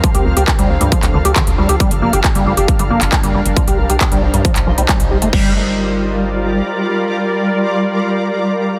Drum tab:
CC |----------------|----------------|----------------|x---------------|
HH |xx-xxx-xxx-xxx-x|xx-xxx-xxx-xxx-x|xx-xxx-xxx-xxx-x|----------------|
CP |----x----x--x---|----x------xx---|----x----x--x---|----------------|
BD |o---o---o---o---|o---o---o---o---|o---o---o---o---|o---------------|

CC |----------------|
HH |----------------|
CP |----------------|
BD |----------------|